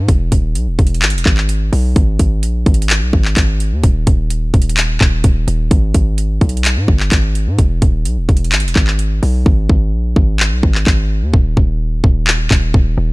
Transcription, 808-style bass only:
0, 0, Header, 1, 2, 480
1, 0, Start_track
1, 0, Tempo, 468750
1, 87, Time_signature, 4, 2, 24, 8
1, 13444, End_track
2, 0, Start_track
2, 0, Title_t, "808-style bass"
2, 0, Program_c, 0, 38
2, 87, Note_on_c, 0, 28, 112
2, 318, Note_off_c, 0, 28, 0
2, 327, Note_on_c, 0, 27, 108
2, 567, Note_on_c, 0, 35, 97
2, 582, Note_off_c, 0, 27, 0
2, 686, Note_on_c, 0, 27, 98
2, 702, Note_off_c, 0, 35, 0
2, 801, Note_off_c, 0, 27, 0
2, 807, Note_on_c, 0, 28, 104
2, 1046, Note_on_c, 0, 32, 102
2, 1062, Note_off_c, 0, 28, 0
2, 1166, Note_on_c, 0, 28, 98
2, 1182, Note_off_c, 0, 32, 0
2, 1281, Note_off_c, 0, 28, 0
2, 1287, Note_on_c, 0, 32, 102
2, 1748, Note_off_c, 0, 32, 0
2, 1767, Note_on_c, 0, 35, 103
2, 1998, Note_off_c, 0, 35, 0
2, 2007, Note_on_c, 0, 32, 114
2, 2238, Note_off_c, 0, 32, 0
2, 2248, Note_on_c, 0, 32, 106
2, 2488, Note_on_c, 0, 34, 96
2, 2503, Note_off_c, 0, 32, 0
2, 2716, Note_off_c, 0, 34, 0
2, 2727, Note_on_c, 0, 32, 106
2, 3087, Note_on_c, 0, 35, 98
2, 3103, Note_off_c, 0, 32, 0
2, 3201, Note_off_c, 0, 35, 0
2, 3207, Note_on_c, 0, 32, 99
2, 3438, Note_off_c, 0, 32, 0
2, 3448, Note_on_c, 0, 32, 106
2, 3808, Note_on_c, 0, 39, 99
2, 3823, Note_off_c, 0, 32, 0
2, 3922, Note_off_c, 0, 39, 0
2, 3928, Note_on_c, 0, 27, 113
2, 4158, Note_off_c, 0, 27, 0
2, 4168, Note_on_c, 0, 27, 104
2, 4628, Note_off_c, 0, 27, 0
2, 4647, Note_on_c, 0, 27, 107
2, 5108, Note_off_c, 0, 27, 0
2, 5128, Note_on_c, 0, 27, 101
2, 5358, Note_off_c, 0, 27, 0
2, 5367, Note_on_c, 0, 27, 104
2, 5598, Note_off_c, 0, 27, 0
2, 5608, Note_on_c, 0, 27, 102
2, 5838, Note_off_c, 0, 27, 0
2, 5848, Note_on_c, 0, 32, 109
2, 6078, Note_off_c, 0, 32, 0
2, 6088, Note_on_c, 0, 32, 104
2, 6549, Note_off_c, 0, 32, 0
2, 6567, Note_on_c, 0, 35, 105
2, 6928, Note_on_c, 0, 44, 99
2, 6943, Note_off_c, 0, 35, 0
2, 7042, Note_off_c, 0, 44, 0
2, 7047, Note_on_c, 0, 31, 105
2, 7278, Note_off_c, 0, 31, 0
2, 7288, Note_on_c, 0, 32, 107
2, 7647, Note_on_c, 0, 44, 103
2, 7662, Note_off_c, 0, 32, 0
2, 7761, Note_off_c, 0, 44, 0
2, 7768, Note_on_c, 0, 28, 110
2, 7998, Note_off_c, 0, 28, 0
2, 8008, Note_on_c, 0, 27, 110
2, 8247, Note_on_c, 0, 35, 97
2, 8263, Note_off_c, 0, 27, 0
2, 8367, Note_on_c, 0, 27, 97
2, 8383, Note_off_c, 0, 35, 0
2, 8481, Note_off_c, 0, 27, 0
2, 8487, Note_on_c, 0, 28, 105
2, 8728, Note_on_c, 0, 32, 103
2, 8744, Note_off_c, 0, 28, 0
2, 8848, Note_on_c, 0, 28, 98
2, 8863, Note_off_c, 0, 32, 0
2, 8962, Note_off_c, 0, 28, 0
2, 8967, Note_on_c, 0, 32, 103
2, 9428, Note_off_c, 0, 32, 0
2, 9448, Note_on_c, 0, 35, 101
2, 9678, Note_off_c, 0, 35, 0
2, 9687, Note_on_c, 0, 32, 108
2, 9918, Note_off_c, 0, 32, 0
2, 9928, Note_on_c, 0, 32, 108
2, 10167, Note_on_c, 0, 34, 95
2, 10182, Note_off_c, 0, 32, 0
2, 10395, Note_off_c, 0, 34, 0
2, 10407, Note_on_c, 0, 32, 102
2, 10768, Note_on_c, 0, 35, 100
2, 10783, Note_off_c, 0, 32, 0
2, 10882, Note_off_c, 0, 35, 0
2, 10887, Note_on_c, 0, 32, 103
2, 11118, Note_off_c, 0, 32, 0
2, 11128, Note_on_c, 0, 32, 108
2, 11487, Note_on_c, 0, 39, 102
2, 11503, Note_off_c, 0, 32, 0
2, 11601, Note_off_c, 0, 39, 0
2, 11608, Note_on_c, 0, 27, 108
2, 11838, Note_off_c, 0, 27, 0
2, 11848, Note_on_c, 0, 27, 105
2, 12308, Note_off_c, 0, 27, 0
2, 12327, Note_on_c, 0, 27, 105
2, 12788, Note_off_c, 0, 27, 0
2, 12807, Note_on_c, 0, 27, 102
2, 13038, Note_off_c, 0, 27, 0
2, 13048, Note_on_c, 0, 27, 108
2, 13278, Note_off_c, 0, 27, 0
2, 13287, Note_on_c, 0, 27, 106
2, 13444, Note_off_c, 0, 27, 0
2, 13444, End_track
0, 0, End_of_file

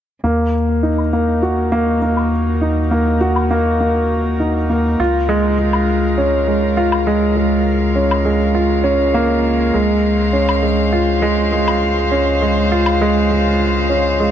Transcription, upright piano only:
0, 0, Header, 1, 2, 480
1, 0, Start_track
1, 0, Tempo, 594059
1, 192, Time_signature, 4, 2, 24, 8
1, 11565, End_track
2, 0, Start_track
2, 0, Title_t, "Upright piano"
2, 0, Program_c, 0, 0
2, 192, Note_on_c, 0, 58, 63
2, 351, Control_c, 0, 64, 127
2, 420, Note_off_c, 0, 58, 0
2, 670, Note_on_c, 0, 63, 50
2, 808, Note_off_c, 0, 63, 0
2, 913, Note_on_c, 0, 58, 55
2, 1141, Note_off_c, 0, 58, 0
2, 1152, Note_on_c, 0, 66, 65
2, 1380, Note_off_c, 0, 66, 0
2, 1390, Note_on_c, 0, 58, 76
2, 1619, Note_off_c, 0, 58, 0
2, 1633, Note_on_c, 0, 58, 59
2, 1861, Note_off_c, 0, 58, 0
2, 2112, Note_on_c, 0, 63, 59
2, 2249, Note_off_c, 0, 63, 0
2, 2352, Note_on_c, 0, 58, 58
2, 2580, Note_off_c, 0, 58, 0
2, 2592, Note_on_c, 0, 66, 76
2, 2820, Note_off_c, 0, 66, 0
2, 2832, Note_on_c, 0, 58, 71
2, 3060, Note_off_c, 0, 58, 0
2, 3074, Note_on_c, 0, 58, 58
2, 3301, Note_off_c, 0, 58, 0
2, 3553, Note_on_c, 0, 63, 55
2, 3690, Note_off_c, 0, 63, 0
2, 3794, Note_on_c, 0, 58, 56
2, 4021, Note_off_c, 0, 58, 0
2, 4038, Note_on_c, 0, 65, 77
2, 4045, Control_c, 0, 64, 0
2, 4177, Control_c, 0, 64, 127
2, 4263, Note_off_c, 0, 65, 0
2, 4272, Note_on_c, 0, 56, 82
2, 4498, Note_off_c, 0, 56, 0
2, 4511, Note_on_c, 0, 56, 56
2, 4740, Note_off_c, 0, 56, 0
2, 4992, Note_on_c, 0, 61, 63
2, 5129, Note_off_c, 0, 61, 0
2, 5232, Note_on_c, 0, 56, 58
2, 5460, Note_off_c, 0, 56, 0
2, 5471, Note_on_c, 0, 65, 77
2, 5700, Note_off_c, 0, 65, 0
2, 5711, Note_on_c, 0, 56, 73
2, 5940, Note_off_c, 0, 56, 0
2, 5952, Note_on_c, 0, 56, 59
2, 6180, Note_off_c, 0, 56, 0
2, 6428, Note_on_c, 0, 61, 58
2, 6567, Note_off_c, 0, 61, 0
2, 6667, Note_on_c, 0, 56, 60
2, 6898, Note_off_c, 0, 56, 0
2, 6905, Note_on_c, 0, 65, 66
2, 7137, Note_off_c, 0, 65, 0
2, 7141, Note_on_c, 0, 61, 83
2, 7284, Note_off_c, 0, 61, 0
2, 7387, Note_on_c, 0, 58, 77
2, 7618, Note_off_c, 0, 58, 0
2, 7869, Note_on_c, 0, 56, 66
2, 7883, Control_c, 0, 64, 0
2, 8032, Control_c, 0, 64, 127
2, 8099, Note_off_c, 0, 56, 0
2, 8347, Note_on_c, 0, 61, 60
2, 8487, Note_off_c, 0, 61, 0
2, 8585, Note_on_c, 0, 56, 56
2, 8817, Note_off_c, 0, 56, 0
2, 8827, Note_on_c, 0, 65, 69
2, 9058, Note_off_c, 0, 65, 0
2, 9067, Note_on_c, 0, 56, 80
2, 9298, Note_off_c, 0, 56, 0
2, 9311, Note_on_c, 0, 56, 58
2, 9540, Note_off_c, 0, 56, 0
2, 9789, Note_on_c, 0, 61, 64
2, 9928, Note_off_c, 0, 61, 0
2, 10036, Note_on_c, 0, 56, 62
2, 10262, Note_off_c, 0, 56, 0
2, 10275, Note_on_c, 0, 65, 81
2, 10502, Note_off_c, 0, 65, 0
2, 10516, Note_on_c, 0, 56, 83
2, 10742, Note_off_c, 0, 56, 0
2, 10754, Note_on_c, 0, 56, 63
2, 10981, Note_off_c, 0, 56, 0
2, 11228, Note_on_c, 0, 61, 61
2, 11367, Note_off_c, 0, 61, 0
2, 11473, Note_on_c, 0, 56, 58
2, 11565, Note_off_c, 0, 56, 0
2, 11565, End_track
0, 0, End_of_file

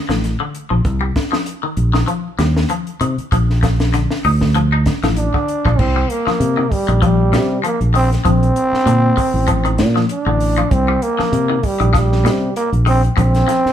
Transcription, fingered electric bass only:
0, 0, Header, 1, 3, 480
1, 0, Start_track
1, 0, Tempo, 616016
1, 667, Time_signature, 4, 2, 24, 8
1, 10695, End_track
2, 0, Start_track
2, 0, Title_t, "Fingered electric bass"
2, 0, Program_c, 0, 33
2, 72, Note_on_c, 0, 33, 77
2, 265, Note_off_c, 0, 33, 0
2, 551, Note_on_c, 0, 34, 81
2, 640, Note_off_c, 0, 34, 0
2, 663, Note_on_c, 0, 36, 93
2, 855, Note_off_c, 0, 36, 0
2, 1379, Note_on_c, 0, 34, 89
2, 1573, Note_off_c, 0, 34, 0
2, 1859, Note_on_c, 0, 39, 81
2, 2054, Note_off_c, 0, 39, 0
2, 2343, Note_on_c, 0, 48, 88
2, 2451, Note_off_c, 0, 48, 0
2, 2587, Note_on_c, 0, 34, 87
2, 3160, Note_off_c, 0, 34, 0
2, 3309, Note_on_c, 0, 38, 87
2, 3796, Note_off_c, 0, 38, 0
2, 3922, Note_on_c, 0, 33, 92
2, 4113, Note_off_c, 0, 33, 0
2, 4405, Note_on_c, 0, 34, 85
2, 4490, Note_off_c, 0, 34, 0
2, 4514, Note_on_c, 0, 36, 90
2, 4703, Note_off_c, 0, 36, 0
2, 4987, Note_on_c, 0, 48, 88
2, 5180, Note_off_c, 0, 48, 0
2, 5364, Note_on_c, 0, 34, 82
2, 5707, Note_on_c, 0, 48, 92
2, 5719, Note_off_c, 0, 34, 0
2, 5899, Note_off_c, 0, 48, 0
2, 6083, Note_on_c, 0, 34, 79
2, 6358, Note_off_c, 0, 34, 0
2, 6434, Note_on_c, 0, 34, 94
2, 6623, Note_off_c, 0, 34, 0
2, 6903, Note_on_c, 0, 46, 91
2, 7096, Note_off_c, 0, 46, 0
2, 7276, Note_on_c, 0, 33, 81
2, 7625, Note_on_c, 0, 46, 97
2, 7637, Note_off_c, 0, 33, 0
2, 7817, Note_off_c, 0, 46, 0
2, 7997, Note_on_c, 0, 33, 80
2, 8273, Note_off_c, 0, 33, 0
2, 8347, Note_on_c, 0, 36, 95
2, 8537, Note_off_c, 0, 36, 0
2, 8824, Note_on_c, 0, 48, 93
2, 9015, Note_off_c, 0, 48, 0
2, 9198, Note_on_c, 0, 34, 92
2, 9538, Note_on_c, 0, 48, 83
2, 9550, Note_off_c, 0, 34, 0
2, 9731, Note_off_c, 0, 48, 0
2, 9915, Note_on_c, 0, 34, 88
2, 10190, Note_off_c, 0, 34, 0
2, 10267, Note_on_c, 0, 34, 107
2, 10455, Note_off_c, 0, 34, 0
2, 10695, End_track
3, 0, Start_track
3, 0, Title_t, "Muted fingered electric bass strokes"
3, 2477, Note_on_c, 9, 29, 36
3, 2555, Note_off_c, 9, 29, 0
3, 4884, Note_on_c, 9, 29, 41
3, 4962, Note_off_c, 9, 29, 0
3, 6799, Note_on_c, 9, 29, 40
3, 6877, Note_off_c, 9, 29, 0
3, 8721, Note_on_c, 9, 29, 41
3, 8799, Note_off_c, 9, 29, 0
3, 10641, Note_on_c, 9, 29, 41
3, 10695, Note_off_c, 9, 29, 0
3, 10695, End_track
0, 0, End_of_file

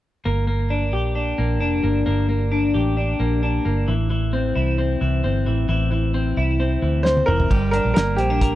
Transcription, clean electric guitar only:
0, 0, Header, 1, 2, 480
1, 0, Start_track
1, 0, Tempo, 453515
1, 268, Time_signature, 4, 2, 24, 8
1, 9051, End_track
2, 0, Start_track
2, 0, Title_t, "Clean electric guitar"
2, 0, Program_c, 0, 27
2, 269, Note_on_c, 0, 58, 61
2, 487, Note_off_c, 0, 58, 0
2, 500, Note_on_c, 0, 58, 45
2, 744, Note_on_c, 0, 62, 53
2, 986, Note_on_c, 0, 67, 52
2, 1208, Note_off_c, 0, 62, 0
2, 1221, Note_on_c, 0, 62, 50
2, 1450, Note_off_c, 0, 58, 0
2, 1463, Note_on_c, 0, 58, 50
2, 1686, Note_off_c, 0, 62, 0
2, 1699, Note_on_c, 0, 62, 51
2, 1930, Note_off_c, 0, 58, 0
2, 1942, Note_on_c, 0, 58, 49
2, 2168, Note_off_c, 0, 58, 0
2, 2181, Note_on_c, 0, 58, 65
2, 2409, Note_off_c, 0, 58, 0
2, 2421, Note_on_c, 0, 58, 50
2, 2651, Note_off_c, 0, 62, 0
2, 2664, Note_on_c, 0, 62, 50
2, 2892, Note_off_c, 0, 67, 0
2, 2905, Note_on_c, 0, 67, 53
2, 3132, Note_off_c, 0, 62, 0
2, 3145, Note_on_c, 0, 62, 51
2, 3371, Note_off_c, 0, 58, 0
2, 3384, Note_on_c, 0, 58, 50
2, 3615, Note_off_c, 0, 62, 0
2, 3628, Note_on_c, 0, 62, 53
2, 3854, Note_off_c, 0, 58, 0
2, 3867, Note_on_c, 0, 58, 51
2, 4105, Note_on_c, 0, 52, 68
2, 4154, Note_off_c, 0, 67, 0
2, 4155, Note_off_c, 0, 58, 0
2, 4155, Note_off_c, 0, 62, 0
2, 4331, Note_off_c, 0, 52, 0
2, 4344, Note_on_c, 0, 52, 52
2, 4583, Note_on_c, 0, 60, 55
2, 4821, Note_on_c, 0, 64, 57
2, 5050, Note_off_c, 0, 60, 0
2, 5063, Note_on_c, 0, 60, 52
2, 5290, Note_off_c, 0, 52, 0
2, 5303, Note_on_c, 0, 52, 55
2, 5533, Note_off_c, 0, 60, 0
2, 5545, Note_on_c, 0, 60, 52
2, 5772, Note_off_c, 0, 52, 0
2, 5784, Note_on_c, 0, 52, 56
2, 6008, Note_off_c, 0, 52, 0
2, 6021, Note_on_c, 0, 52, 66
2, 6251, Note_off_c, 0, 52, 0
2, 6264, Note_on_c, 0, 52, 52
2, 6488, Note_off_c, 0, 60, 0
2, 6501, Note_on_c, 0, 60, 54
2, 6733, Note_off_c, 0, 64, 0
2, 6746, Note_on_c, 0, 64, 55
2, 6970, Note_off_c, 0, 60, 0
2, 6982, Note_on_c, 0, 60, 54
2, 7208, Note_off_c, 0, 52, 0
2, 7221, Note_on_c, 0, 52, 51
2, 7449, Note_off_c, 0, 60, 0
2, 7462, Note_on_c, 0, 60, 52
2, 7690, Note_off_c, 0, 52, 0
2, 7703, Note_on_c, 0, 52, 54
2, 7938, Note_off_c, 0, 52, 0
2, 7942, Note_on_c, 0, 55, 68
2, 7992, Note_off_c, 0, 60, 0
2, 7994, Note_off_c, 0, 64, 0
2, 8187, Note_on_c, 0, 62, 51
2, 8428, Note_on_c, 0, 58, 55
2, 8661, Note_off_c, 0, 62, 0
2, 8666, Note_on_c, 0, 60, 51
2, 8786, Note_off_c, 0, 60, 0
2, 8786, Note_on_c, 0, 62, 46
2, 8906, Note_on_c, 0, 70, 58
2, 9051, Note_off_c, 0, 55, 0
2, 9051, Note_off_c, 0, 58, 0
2, 9051, Note_off_c, 0, 62, 0
2, 9051, Note_off_c, 0, 70, 0
2, 9051, End_track
0, 0, End_of_file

